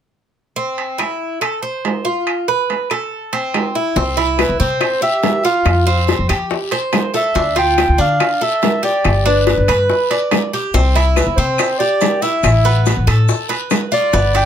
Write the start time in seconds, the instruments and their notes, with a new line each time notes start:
0.56 cuban tres C4
0.78 high timbale
0.98 cuban tres E4, high timbale, low timbale, claves
1.41 cuban tres A4, high timbale, claves
1.62 cuban tres C5
1.85 high timbale, low timbale
2.05 cuban tres F4
2.27 high timbale, claves
2.48 cuban tres B4
2.70 high timbale, low timbale
2.90 cuban tres A4, high timbale, claves
3.33 cuban tres C4, high timbale
3.54 high timbale, low timbale, claves
3.75 cuban tres E4
3.96 upright bass C2, cuban tres C4, high bongo, long guiro
4.17 cuban tres E4, high bongo, high timbale
4.39 clarinet B4, high bongo, high timbale, low timbale, short guiro, claves
4.49 upright bass C2
4.60 upright bass C3, cuban tres C4, clarinet C5, short guiro
4.81 high bongo, high timbale, long guiro, claves
5.02 cuban tres G4, clarinet E5, high bongo
5.23 high bongo, low bongo, high timbale, low timbale, short guiro
5.44 cuban tres F4, clarinet F5, high bongo, short guiro
5.65 upright bass F2, high bongo, high timbale, long guiro, claves
5.87 cuban tres C4, high bongo
6.07 high bongo, high timbale, low timbale, short guiro
6.19 upright bass F2
6.29 upright bass F3, cuban tres G4, high timbale, short guiro, claves
6.50 high bongo, long guiro
6.71 cuban tres C5, high bongo, high timbale
6.93 high bongo, low bongo, high timbale, low timbale, short guiro, claves
7.14 cuban tres A4, clarinet E5, high bongo, short guiro
7.34 upright bass D2, cuban tres D4, high bongo, long guiro
7.56 cuban tres F4, clarinet G5, high bongo, high timbale
7.78 high bongo, high timbale, low timbale, short guiro, claves
7.89 upright bass D2
7.98 upright bass D3, cuban tres D4, clarinet F5, short guiro
8.20 high bongo, high timbale, long guiro, claves
8.41 cuban tres A4, clarinet E5, high bongo
8.62 high bongo, low bongo, high timbale, low timbale, short guiro
8.83 cuban tres G4, clarinet D5, high bongo, short guiro
9.04 upright bass G1, high bongo, high timbale, long guiro, claves
9.26 cuban tres D4, clarinet B4, high bongo
9.47 high bongo, high timbale, low timbale, short guiro
9.57 upright bass G1
9.68 upright bass G2, cuban tres B4, high timbale, short guiro, claves
9.89 high bongo, long guiro
10.11 cuban tres D5, high bongo, high timbale
10.31 high bongo, low bongo, high timbale, low timbale, short guiro, claves
10.53 cuban tres G4, high bongo, short guiro
10.74 upright bass C2, cuban tres C4, high bongo, long guiro, maracas
10.95 cuban tres E4, high bongo, high timbale, maracas
11.16 clarinet B4, high bongo, high timbale, low timbale, short guiro, claves, maracas
11.26 upright bass C2
11.36 upright bass C3, cuban tres C4, clarinet C5, short guiro, maracas
11.58 high bongo, high timbale, long guiro, claves, maracas
11.79 cuban tres G4, clarinet D5, high bongo, maracas
12.01 high bongo, low bongo, high timbale, low timbale, short guiro, maracas
12.22 cuban tres E4, clarinet E5, high bongo, short guiro, maracas
12.43 upright bass A1, high bongo, high timbale, long guiro, claves, maracas
12.64 cuban tres B3, high bongo, maracas
12.86 high bongo, high timbale, low timbale, short guiro, maracas
12.97 upright bass A1
13.07 upright bass A2, cuban tres A4, high timbale, short guiro, claves, maracas
13.28 high bongo, long guiro, maracas
13.49 cuban tres B4, high bongo, high timbale, maracas
13.70 high bongo, low bongo, high timbale, low timbale, short guiro, claves, maracas
13.92 cuban tres F4, clarinet D5, high bongo, short guiro, maracas
14.13 upright bass G1, cuban tres B3, high bongo, long guiro, maracas
14.34 cuban tres D4, clarinet G5, high bongo, high timbale, maracas